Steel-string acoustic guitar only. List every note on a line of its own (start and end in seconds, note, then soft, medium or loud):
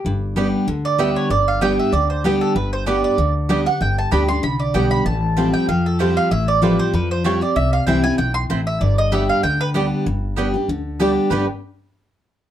0.06 0.65 G2 medium
0.36 0.66 G3 medium
0.36 0.67 B3 medium
0.36 0.67 D4 medium
0.36 0.67 G4 loud
0.68 1.27 D3 loud
0.98 1.29 G3 medium
0.98 1.29 B3 loud
0.98 1.29 D4 loud
0.98 1.30 G4 medium
1.30 1.90 G2 medium
1.61 1.91 G3 medium
1.61 1.91 B3 medium
1.61 1.92 D4 medium
1.61 1.92 G4 medium
1.93 2.53 D3 medium
2.24 2.54 G3 medium
2.24 2.54 B3 loud
2.24 2.55 D4 loud
2.24 2.55 G4 loud
2.56 3.15 G2 medium
2.87 3.17 G3 medium
2.87 3.17 B3 medium
2.87 3.17 D4 medium
2.87 3.17 G4 loud
3.18 3.78 D3 medium
3.49 3.65 G3 loud
3.49 3.66 B3 loud
3.49 3.66 D4 medium
3.49 3.65 G4 loud
3.66 3.81 D4 soft
3.66 3.80 G4 medium
3.81 4.40 G2 medium
4.12 4.28 G3 medium
4.12 4.28 B3 medium
4.12 4.29 D4 medium
4.12 4.27 G4 loud
4.29 4.43 D4 medium
4.29 4.42 G4 medium
4.43 5.03 D3 loud
4.74 5.04 G3 medium
4.74 5.04 B3 medium
4.74 5.05 D4 medium
4.74 5.05 G4 medium
5.06 5.65 A2 medium
5.37 5.67 F3 medium
5.37 5.67 G3 medium
5.37 5.67 C4 medium
5.37 5.68 G4 loud
5.69 5.98 F3 medium
6.00 6.29 F3 medium
6.00 6.30 G3 medium
6.00 6.30 C4 loud
6.00 6.30 G4 loud
6.32 6.91 A2 medium
6.62 6.92 F3 medium
6.62 6.92 G3 medium
6.62 6.92 C4 medium
6.62 6.93 G4 medium
6.93 7.23 F3 medium
7.24 7.41 F3 medium
7.24 7.41 G3 medium
7.24 7.41 C4 loud
7.24 7.40 G4 loud
7.41 7.56 C4 soft
7.41 7.55 G4 medium
7.56 8.15 C3 medium
7.87 8.03 E3 medium
7.87 8.03 G3 loud
7.87 8.04 C4 loud
7.87 8.03 E4 loud
8.04 8.19 C4 medium
8.04 8.18 E4 medium
8.19 8.48 B2 medium
8.50 8.80 A2 medium
8.81 9.41 G2 medium
9.12 9.42 G3 medium
9.12 9.42 B3 medium
9.12 9.42 D4 medium
9.12 9.43 G4 medium
9.44 10.03 D3 medium
9.74 10.04 G3 medium
9.74 10.05 B3 medium
9.74 10.05 D4 loud
9.74 10.05 G4 medium
10.06 10.66 G2 medium
10.37 10.53 G3 medium
10.37 10.54 B3 medium
10.37 10.54 D4 medium
10.37 10.53 G4 loud
10.54 10.69 D4 soft
10.54 10.68 G4 medium
10.69 11.29 D3 medium
11.00 11.30 G3 medium
11.00 11.30 B3 loud
11.00 11.30 D4 medium
11.00 11.30 G4 loud
11.31 11.44 G2 medium
11.31 11.45 D3 medium
11.31 11.45 G3 medium
11.31 11.45 B3 medium
11.31 11.45 D4 medium
11.31 11.45 G4 medium